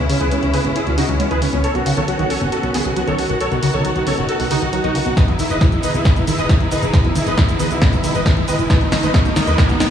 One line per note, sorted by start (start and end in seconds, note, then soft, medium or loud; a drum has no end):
0.00 1.61 C#3 medium
0.00 1.61 G#3 medium
0.00 5.13 B3 medium
0.00 1.61 E4 medium
0.09 0.15 C#3 loud
0.09 0.16 C#4 medium
0.09 open hi-hat loud
0.20 0.29 C#2 medium
0.20 0.26 E3 medium
0.20 0.27 G#4 medium
0.20 0.27 B4 medium
0.20 closed hi-hat soft
0.31 0.37 G#3 medium
0.31 0.38 C#4 medium
0.31 closed hi-hat medium
0.42 0.51 C#2 medium
0.42 0.48 E3 medium
0.42 0.49 C#4 medium
0.42 closed hi-hat soft
0.53 0.59 C#3 medium
0.53 0.60 G#4 medium
0.53 0.60 B4 medium
0.53 open hi-hat loud
0.64 0.73 G#1 medium
0.64 0.70 B2 medium
0.64 0.71 C#4 medium
0.64 closed hi-hat soft
0.76 0.82 E4 medium
0.76 0.82 G#4 medium
0.76 closed hi-hat medium
0.86 0.95 C#2 medium
0.86 0.95 B2 loud
0.86 0.93 C#4 medium
0.86 closed hi-hat soft
0.97 1.03 C#3 loud
0.97 1.04 D#4 medium
0.97 1.04 F#4 medium
0.97 open hi-hat loud
1.09 1.17 C#2 medium
1.09 1.14 E3 medium
1.09 1.15 C#4 medium
1.09 closed hi-hat soft
1.20 1.25 G#3 medium
1.20 1.26 C#4 medium
1.20 closed hi-hat medium
1.31 1.39 C#2 medium
1.31 1.36 E3 medium
1.31 1.37 G#4 medium
1.31 1.37 B4 medium
1.31 closed hi-hat soft
1.42 1.47 C#3 medium
1.42 1.49 C#4 medium
1.42 open hi-hat loud
1.53 1.61 C#2 medium
1.53 1.59 B2 medium
1.53 1.60 C#4 medium
1.53 closed hi-hat soft
1.64 5.13 D#3 medium
1.64 3.39 C#4 medium
1.64 1.71 A4 medium
1.64 1.71 C#5 loud
1.64 closed hi-hat medium
1.75 1.83 B1 medium
1.75 1.83 B2 loud
1.75 1.82 F#4 medium
1.75 closed hi-hat soft
1.86 1.92 C#3 loud
1.86 1.93 F#4 medium
1.86 open hi-hat loud
1.97 2.05 B1 medium
1.97 2.03 D#3 medium
1.97 2.04 A4 medium
1.97 2.04 C#5 medium
1.97 closed hi-hat soft
2.08 2.14 F#3 medium
2.08 2.15 F#4 medium
2.08 closed hi-hat medium
2.19 2.28 B1 medium
2.19 2.25 D#3 medium
2.19 2.26 F#4 medium
2.19 closed hi-hat soft
2.30 2.36 C#3 medium
2.30 2.37 A4 medium
2.30 2.37 C#5 medium
2.30 open hi-hat loud
2.41 2.50 F#1 medium
2.41 2.47 B2 medium
2.41 2.48 F#4 medium
2.41 closed hi-hat soft
2.52 2.59 F#4 medium
2.52 2.59 A4 medium
2.52 closed hi-hat medium
2.63 2.72 B1 medium
2.63 2.72 B2 loud
2.63 2.70 F#4 medium
2.63 closed hi-hat soft
2.74 2.80 C#3 loud
2.74 2.81 B3 medium
2.74 2.81 G#4 medium
2.74 open hi-hat loud
2.85 2.94 B1 medium
2.85 2.91 D#3 medium
2.85 2.92 F#4 medium
2.85 closed hi-hat soft
2.96 3.02 F#3 medium
2.96 3.03 F#4 medium
2.96 closed hi-hat medium
3.07 3.16 B1 medium
3.07 3.13 D#3 medium
3.07 3.14 A4 medium
3.07 3.14 C#5 medium
3.07 closed hi-hat soft
3.18 3.24 C#3 medium
3.18 3.25 F#4 medium
3.18 open hi-hat loud
3.29 3.38 B1 medium
3.29 3.35 B2 medium
3.29 3.36 F#4 medium
3.29 closed hi-hat soft
3.40 9.90 D#4 medium
3.40 3.47 A4 medium
3.40 3.47 C#5 loud
3.40 closed hi-hat medium
3.52 3.60 B1 medium
3.52 3.60 B2 loud
3.52 3.58 F#4 medium
3.52 closed hi-hat soft
3.63 3.68 C#3 loud
3.63 3.69 F#4 medium
3.63 open hi-hat loud
3.74 3.82 B1 medium
3.74 3.79 D#3 medium
3.74 3.80 A4 medium
3.74 3.80 C#5 loud
3.74 closed hi-hat soft
3.85 3.90 F#3 medium
3.85 3.91 F#4 medium
3.85 closed hi-hat medium
3.96 4.04 B1 medium
3.96 4.01 D#3 medium
3.96 4.02 F#4 medium
3.96 closed hi-hat soft
4.07 4.12 C#3 medium
4.07 4.13 A4 medium
4.07 4.13 C#5 medium
4.07 open hi-hat loud
4.18 4.26 F#1 medium
4.18 4.23 B2 medium
4.18 4.24 F#4 medium
4.18 closed hi-hat soft
4.29 4.35 F#4 medium
4.29 4.36 A4 medium
4.29 closed hi-hat medium
4.40 4.48 B1 medium
4.40 4.48 B2 loud
4.40 4.47 F#4 medium
4.40 open hi-hat medium
4.51 4.56 C#3 loud
4.51 4.57 D#4 medium
4.51 4.57 F#4 medium
4.51 open hi-hat loud
4.62 4.70 B1 medium
4.62 4.67 D#3 medium
4.62 4.69 F#4 medium
4.62 closed hi-hat soft
4.73 4.79 F#3 medium
4.73 4.80 F#4 medium
4.73 closed hi-hat medium
4.84 4.92 B1 medium
4.84 4.90 D#3 medium
4.84 4.91 D#4 medium
4.84 4.91 F#4 medium
4.84 closed hi-hat soft
4.95 5.01 C#3 medium
4.95 5.02 F#4 medium
4.95 open hi-hat loud
5.06 5.14 B1 medium
5.06 5.12 B2 medium
5.06 5.13 F#4 medium
5.06 closed hi-hat soft
5.17 8.66 E3 medium
5.17 9.90 B3 medium
5.17 8.66 G#4 medium
5.17 5.24 B4 medium
5.17 5.24 D#5 medium
5.17 kick loud
5.17 snare soft
5.17 closed hi-hat medium
5.17 riser medium
5.17 shaker soft
5.28 5.36 E1 medium
5.28 5.36 B2 medium
5.28 5.35 E4 medium
5.28 closed hi-hat soft
5.39 5.45 D#3 medium
5.39 5.46 E4 medium
5.39 open hi-hat loud
5.39 shaker medium
5.50 5.58 E1 medium
5.50 5.56 E3 medium
5.50 5.57 B4 medium
5.50 5.57 D#5 medium
5.50 closed hi-hat soft
5.50 shaker soft
5.61 5.67 G#3 medium
5.61 5.68 E4 medium
5.61 kick loud
5.61 snare soft
5.61 closed hi-hat medium
5.61 shaker soft
5.72 5.81 E1 medium
5.72 5.78 E3 medium
5.72 5.79 E4 medium
5.72 closed hi-hat soft
5.72 shaker soft
5.83 5.89 D#3 medium
5.83 5.90 B4 medium
5.83 5.90 D#5 medium
5.83 open hi-hat loud
5.83 shaker medium
5.94 6.03 B1 medium
5.94 6.00 B2 medium
5.94 6.01 E4 medium
5.94 closed hi-hat soft
5.94 shaker soft
6.05 6.12 B4 medium
6.05 6.12 D#5 medium
6.05 kick loud
6.05 snare medium
6.05 closed hi-hat medium
6.05 shaker soft
6.16 6.25 E1 medium
6.16 6.25 B2 medium
6.16 6.23 E4 medium
6.16 closed hi-hat soft
6.16 shaker soft
6.27 6.33 D#3 medium
6.27 6.34 E4 medium
6.27 open hi-hat loud
6.27 shaker medium
6.38 6.47 E1 medium
6.38 6.44 E3 medium
6.38 6.45 B4 medium
6.38 6.45 D#5 medium
6.38 closed hi-hat soft
6.38 shaker soft
6.49 6.55 G#3 medium
6.49 6.56 E4 medium
6.49 kick loud
6.49 snare medium
6.49 closed hi-hat medium
6.49 shaker soft
6.60 6.69 E1 medium
6.60 6.66 E3 medium
6.60 6.67 E4 medium
6.60 closed hi-hat soft
6.71 6.77 D#3 medium
6.71 6.78 B4 medium
6.71 6.78 D#5 medium
6.71 open hi-hat loud
6.71 shaker medium
6.82 6.91 E1 medium
6.82 6.88 B2 medium
6.82 6.89 E4 medium
6.82 closed hi-hat soft
6.82 shaker soft
6.94 7.00 B4 medium
6.94 7.00 D#5 medium
6.94 kick loud
6.94 snare medium
6.94 closed hi-hat medium
6.94 shaker soft
7.04 7.13 E1 medium
7.04 7.13 B2 loud
7.04 7.11 E4 medium
7.04 closed hi-hat soft
7.15 7.21 D#3 loud
7.15 7.22 E4 medium
7.15 open hi-hat loud
7.15 shaker medium
7.27 7.35 E1 medium
7.27 7.32 E3 medium
7.27 7.33 B4 medium
7.27 7.33 D#5 medium
7.27 closed hi-hat soft
7.27 shaker soft
7.38 7.43 G#3 medium
7.38 7.44 E4 medium
7.38 kick loud
7.38 snare medium
7.38 closed hi-hat medium
7.38 shaker soft
7.49 7.57 E1 medium
7.49 7.54 E3 medium
7.49 7.55 E4 medium
7.49 closed hi-hat soft
7.49 shaker soft
7.60 7.65 D#3 medium
7.60 7.66 B4 medium
7.60 7.66 D#5 medium
7.60 open hi-hat loud
7.60 shaker medium
7.71 7.79 B1 medium
7.71 7.76 B2 medium
7.71 7.77 E4 medium
7.71 closed hi-hat soft
7.71 shaker soft
7.82 7.88 B4 medium
7.82 7.88 D#5 medium
7.82 kick loud
7.82 snare medium
7.82 closed hi-hat medium
7.82 shaker soft
7.93 8.01 E1 medium
7.93 8.01 B2 loud
7.93 7.99 E4 medium
7.93 closed hi-hat soft
7.93 shaker soft
8.04 8.09 D#3 loud
8.04 8.10 E4 medium
8.04 open hi-hat loud
8.04 shaker medium
8.15 8.23 E1 medium
8.15 8.20 E3 medium
8.15 8.21 B4 medium
8.15 8.22 D#5 medium
8.15 closed hi-hat soft
8.15 shaker soft
8.26 8.32 G#3 medium
8.26 8.33 E4 medium
8.26 kick loud
8.26 snare medium
8.26 closed hi-hat medium
8.26 shaker soft
8.37 8.45 E1 medium
8.37 8.43 E3 medium
8.37 8.44 E4 medium
8.37 closed hi-hat soft
8.48 8.54 D#3 medium
8.48 8.55 B4 medium
8.48 8.55 D#5 medium
8.48 open hi-hat loud
8.48 shaker medium
8.59 8.67 E1 medium
8.59 8.65 B2 medium
8.59 8.66 E4 medium
8.59 closed hi-hat soft
8.59 shaker soft
8.70 9.90 G#3 medium
8.70 8.77 B4 medium
8.70 8.77 D#5 loud
8.70 kick loud
8.70 snare medium
8.70 closed hi-hat medium
8.70 shaker soft
8.81 8.89 G#1 medium
8.81 8.89 B2 loud
8.81 8.88 D#4 medium
8.81 closed hi-hat soft
8.92 8.98 D#3 loud
8.92 8.99 D#4 medium
8.92 snare medium
8.92 open hi-hat loud
8.92 shaker medium
9.03 9.11 G#1 medium
9.03 9.09 D#3 medium
9.03 9.10 B4 medium
9.03 9.10 D#5 loud
9.03 closed hi-hat soft
9.03 shaker soft
9.14 9.21 B4 medium
9.14 9.21 D#5 loud
9.14 kick loud
9.14 snare medium
9.14 closed hi-hat medium
9.14 shaker soft
9.25 9.33 G#1 medium
9.25 9.34 B2 loud
9.25 9.32 D#4 medium
9.25 closed hi-hat soft
9.25 shaker soft
9.36 9.42 D#3 loud
9.36 9.43 D#4 medium
9.36 snare medium
9.36 open hi-hat loud
9.36 shaker medium
9.47 9.55 D#2 medium
9.47 9.53 D#3 medium
9.47 9.54 B4 medium
9.47 9.54 D#5 loud
9.47 closed hi-hat soft
9.47 shaker soft
9.58 9.65 B4 medium
9.58 9.65 D#5 loud
9.58 kick loud
9.58 snare medium
9.58 closed hi-hat loud
9.58 shaker soft
9.69 9.78 G#1 medium
9.69 9.78 B2 loud
9.69 9.76 D#4 medium
9.69 closed hi-hat soft
9.69 shaker soft
9.80 9.86 D#3 medium
9.80 9.87 D#4 medium
9.80 snare medium
9.80 open hi-hat loud
9.80 shaker medium